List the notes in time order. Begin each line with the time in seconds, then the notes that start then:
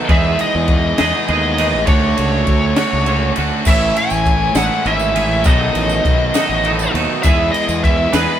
0.08 E2 B2 E3 G#3 B3 D#4 G#4 E5, kick, ride
0.39 D#5, ride
0.55 E2
0.68 kick, ride
0.98 E2 B2 E3 G#3 B3 D#4 G#4 D#5, snare, ride
1.28 D#2 E2 B2 E3 G#3 B3 D#4 G#4, ride
1.58 E2 B2 E3 G#3 B3 D#4 G#4, ride
1.74 A1
1.87 D2 D3 A3 D4 F#4 C#5, kick, ride
2.18 C#2, ride
2.47 D2, kick, ride
2.76 D3 A3 C#4 D4 F#4, snare, ride
2.93 C#2
3.06 D3 A3 C#4 D4 F#4, ride
3.36 D2 D3 A3 C#4 D4 F#4, ride
3.65 A1 A2 E3 A3 C#4 E4 E5, kick, tambourine, crash
3.96 G#5, ride
4.10 A1, tambourine
4.25 kick, ride, tambourine
4.55 A1 A2 E3 G#3 A3 C#4 E4 F#5, snare, ride, tambourine
4.85 G#1 A2 E3 G#3 A3 C#4 E4 E5, ride, tambourine
4.99 tambourine
5.14 A2 E3 G#3 A3 C#4 E4, ride
5.30 A1
5.44 B1 B2 D#3 F#3 A3 B3 D#4 F#4 A4 D#5, kick, ride, tambourine
5.74 A1, ride
5.89 tambourine
6.05 B1, kick, ride, tambourine
6.34 B2 D#3 F#3 A3 B3 D#4 F#4 A4, snare, ride, tambourine
6.49 A1
6.64 B2 D#3 F#3 A3 B3 D#4 F#4 A4, ride, tambourine
6.79 tambourine
6.93 D#2 B2 D#3 F#3 A3 B3 D#4 F#4 A4, ride
7.23 E2 B2 E3 G#3 B3 E4 G#4 E5, kick, ride, tambourine
7.52 D#5, ride
7.68 E2, tambourine
7.84 E5, kick, ride, tambourine
8.12 E2 B2 E3 G#3 B3 D#4 E4 G#4 B4, snare, ride, tambourine